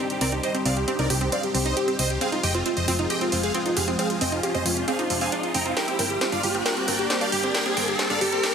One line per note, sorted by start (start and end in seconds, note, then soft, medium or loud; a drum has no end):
0.00 2.18 G3 medium
0.00 5.73 C4 medium
0.00 2.18 D4 medium
0.00 2.18 D#4 medium
0.00 5.73 C5 medium
0.00 riser medium
0.10 0.19 G4 medium
0.10 closed hi-hat soft
0.21 0.40 C2 medium
0.21 0.29 C4 loud
0.21 0.31 A#4 medium
0.21 0.31 D5 medium
0.21 open hi-hat loud
0.32 0.40 D#4 medium
0.32 0.42 G4 medium
0.32 closed hi-hat medium
0.43 0.51 G4 medium
0.43 0.53 C5 medium
0.43 0.53 D#5 medium
0.43 closed hi-hat medium
0.55 0.62 C4 medium
0.55 0.64 G4 medium
0.55 closed hi-hat medium
0.65 0.84 C2 loud
0.65 0.70 C4 medium
0.65 0.75 D5 medium
0.65 0.75 F5 medium
0.65 open hi-hat loud
0.77 0.86 G4 medium
0.77 closed hi-hat medium
0.88 0.96 C4 loud
0.88 0.97 G4 medium
0.88 closed hi-hat medium
0.99 1.08 C2 loud
0.99 1.07 D#4 medium
0.99 1.08 A#4 medium
0.99 1.08 D5 medium
0.99 closed hi-hat medium
1.10 1.29 C2 loud
1.10 1.19 G4 medium
1.10 1.18 G4 medium
1.10 open hi-hat loud
1.21 1.29 C4 medium
1.21 1.30 G4 medium
1.21 closed hi-hat medium
1.32 1.37 C4 medium
1.32 1.42 D5 medium
1.32 1.42 F5 medium
1.32 closed hi-hat medium
1.43 1.53 G4 medium
1.43 closed hi-hat soft
1.54 1.73 C2 medium
1.54 1.62 C4 loud
1.54 1.64 G4 medium
1.54 open hi-hat loud
1.66 1.73 D#4 medium
1.66 1.75 C5 medium
1.66 1.75 D#5 medium
1.66 closed hi-hat medium
1.77 1.86 G4 medium
1.77 1.84 G4 medium
1.77 closed hi-hat medium
1.88 1.96 C4 medium
1.88 1.97 G4 medium
1.88 closed hi-hat medium
1.99 2.18 C2 medium
1.99 2.04 C4 medium
1.99 2.08 C5 medium
1.99 2.08 D#5 medium
1.99 open hi-hat loud
2.10 2.19 G4 medium
2.10 closed hi-hat soft
2.21 5.73 F3 medium
2.21 5.73 G#3 medium
2.21 2.29 C4 loud
2.21 2.30 G#4 medium
2.21 5.73 G#4 medium
2.21 2.31 F5 medium
2.21 closed hi-hat medium
2.32 2.40 D#4 medium
2.32 2.42 F4 medium
2.32 closed hi-hat soft
2.43 2.62 F1 loud
2.43 2.51 G4 medium
2.43 2.53 D#5 medium
2.43 2.53 G5 medium
2.43 open hi-hat loud
2.55 2.62 C4 medium
2.55 2.64 F4 medium
2.55 closed hi-hat soft
2.66 2.70 C4 medium
2.66 2.75 F4 medium
2.66 closed hi-hat medium
2.77 2.86 F1 loud
2.77 2.86 C5 medium
2.77 2.86 D#5 loud
2.77 closed hi-hat soft
2.88 3.07 F1 loud
2.88 2.96 C4 loud
2.88 2.97 F4 medium
2.88 open hi-hat loud
2.99 3.07 D#4 medium
2.99 3.08 F4 medium
2.99 closed hi-hat medium
3.10 3.18 G4 medium
3.10 3.19 D#5 medium
3.10 3.19 G5 medium
3.10 closed hi-hat medium
3.21 3.29 C4 medium
3.21 3.31 F4 medium
3.21 closed hi-hat soft
3.32 3.51 F1 medium
3.32 3.37 C4 medium
3.32 3.42 F4 medium
3.32 open hi-hat loud
3.43 3.53 G#4 medium
3.43 3.53 F5 loud
3.43 closed hi-hat medium
3.55 3.62 C4 loud
3.55 3.64 F4 medium
3.55 closed hi-hat medium
3.66 3.73 D#4 medium
3.66 3.75 F4 medium
3.66 closed hi-hat soft
3.77 3.96 F1 medium
3.77 3.85 G4 medium
3.77 3.86 G#4 medium
3.77 3.86 F5 medium
3.77 open hi-hat loud
3.88 3.96 C4 medium
3.88 3.97 F4 medium
3.88 closed hi-hat soft
3.99 4.04 C4 medium
3.99 4.08 G#4 medium
3.99 4.08 F5 medium
3.99 closed hi-hat medium
4.10 4.19 F4 medium
4.10 closed hi-hat soft
4.21 4.40 F1 loud
4.21 4.29 C4 loud
4.21 4.30 D#5 medium
4.21 4.30 G5 medium
4.21 open hi-hat loud
4.32 4.40 D#4 medium
4.32 4.42 F4 medium
4.32 closed hi-hat soft
4.43 4.53 F4 medium
4.43 4.51 G4 medium
4.43 closed hi-hat medium
4.54 4.64 F1 loud
4.54 4.62 C4 medium
4.54 4.64 C5 medium
4.54 4.64 D#5 medium
4.54 closed hi-hat soft
4.66 4.84 F1 loud
4.66 4.70 C4 medium
4.66 4.75 F4 medium
4.66 open hi-hat loud
4.77 4.86 F4 medium
4.77 closed hi-hat soft
4.88 4.96 C4 loud
4.88 4.97 G#4 medium
4.88 4.97 F5 medium
4.88 closed hi-hat medium
4.99 5.07 D#4 medium
4.99 5.08 F4 medium
4.99 closed hi-hat soft
5.10 5.29 F1 medium
5.10 5.18 C3 medium
5.10 5.19 F4 medium
5.10 open hi-hat loud
5.21 5.29 C4 medium
5.21 5.31 F5 medium
5.21 5.31 G#5 medium
5.21 open hi-hat medium
5.32 5.40 D4 medium
5.32 5.42 F4 medium
5.32 closed hi-hat medium
5.43 5.53 F4 medium
5.43 closed hi-hat soft
5.54 5.73 F1 loud
5.54 5.59 C4 medium
5.54 5.64 G5 medium
5.54 5.64 A#5 medium
5.54 open hi-hat loud
5.66 5.76 C4 medium
5.66 5.75 F4 medium
5.66 closed hi-hat soft
5.77 8.55 G3 medium
5.77 8.55 A#3 medium
5.77 8.55 D4 medium
5.77 5.85 G4 medium
5.77 8.55 A#4 medium
5.77 5.86 A#4 medium
5.77 8.55 D5 medium
5.77 5.86 G5 medium
5.77 snare soft
5.77 closed hi-hat medium
5.88 5.96 C4 medium
5.88 5.97 G4 medium
5.88 closed hi-hat medium
5.99 6.18 G1 loud
5.99 6.04 C4 medium
5.99 6.08 A#4 medium
5.99 6.08 G5 medium
5.99 open hi-hat loud
6.10 6.19 G4 medium
6.10 closed hi-hat soft
6.21 6.29 C4 medium
6.21 6.31 G4 medium
6.21 snare soft
6.21 closed hi-hat medium
6.32 6.42 G1 loud
6.32 6.40 D4 medium
6.32 6.42 D5 medium
6.32 6.42 F5 medium
6.32 closed hi-hat soft
6.43 6.62 G1 loud
6.43 6.53 G4 medium
6.43 6.51 G4 medium
6.43 open hi-hat loud
6.43 mid tom medium
6.54 6.62 C4 medium
6.54 6.64 G4 medium
6.54 closed hi-hat medium
6.66 6.73 G4 medium
6.66 6.75 A#4 medium
6.66 6.75 G5 medium
6.66 snare medium
6.66 closed hi-hat medium
6.77 6.85 C4 medium
6.77 6.86 G4 medium
6.77 closed hi-hat soft
6.88 7.07 G1 medium
6.88 6.93 C4 medium
6.88 6.97 A#4 medium
6.88 6.97 G5 medium
6.88 open hi-hat loud
6.99 7.08 G4 medium
6.99 closed hi-hat medium
7.10 7.18 C4 medium
7.10 7.19 G4 medium
7.10 snare medium
7.10 closed hi-hat medium
7.21 7.29 D4 medium
7.21 7.30 D5 medium
7.21 7.30 F5 medium
7.21 closed hi-hat soft
7.21 mid tom medium
7.32 7.51 G1 medium
7.32 7.42 G4 medium
7.32 7.40 G4 medium
7.32 open hi-hat loud
7.43 7.51 C4 medium
7.43 7.53 G4 medium
7.43 closed hi-hat soft
7.54 7.62 G4 medium
7.54 7.64 A#4 medium
7.54 7.64 G5 medium
7.54 snare medium
7.54 closed hi-hat medium
7.66 7.74 C4 medium
7.66 7.75 G4 medium
7.66 closed hi-hat medium
7.77 7.96 G1 loud
7.77 7.81 C4 medium
7.77 7.86 A#4 medium
7.77 7.86 G5 medium
7.77 open hi-hat loud
7.88 7.97 G4 medium
7.88 closed hi-hat medium
7.99 8.07 C4 loud
7.99 8.08 G4 medium
7.99 snare medium
7.99 closed hi-hat medium
8.10 8.19 G1 loud
8.10 8.18 D4 medium
8.10 8.19 D5 medium
8.10 8.19 F5 medium
8.10 closed hi-hat medium
8.21 8.40 G1 loud
8.21 8.31 G4 medium
8.21 8.29 G4 medium
8.21 open hi-hat loud
8.21 mid tom medium
8.32 8.40 C4 medium
8.32 8.42 G4 medium
8.32 closed hi-hat medium
8.43 8.51 G4 medium
8.43 8.53 A#4 medium
8.43 8.53 G5 medium
8.43 snare medium
8.43 closed hi-hat medium